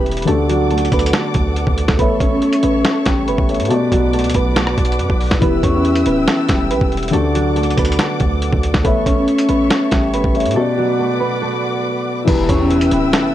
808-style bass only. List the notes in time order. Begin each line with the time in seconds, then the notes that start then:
Already playing: E1
0.28 D2
0.92 D2
1.35 D2
1.67 D2
1.88 D2
1.99 A1
2.20 A1
2.63 A1
3.06 A1
3.28 G1
3.38 A1
3.60 A2
3.92 B1
4.24 D2
4.35 B1
4.78 B1
4.99 F#2
5.10 B1
5.31 B1
5.42 E1
5.63 E2
6.06 D1
6.49 E1
6.70 B1
6.81 E1
7.13 D2
7.78 D2
8.21 D2
8.53 D2
8.74 D2
8.85 A1
9.06 A1
9.49 A1
9.92 A1
10.13 G1
10.24 A1
10.45 A2
12.28 E1
12.49 E2
12.92 D1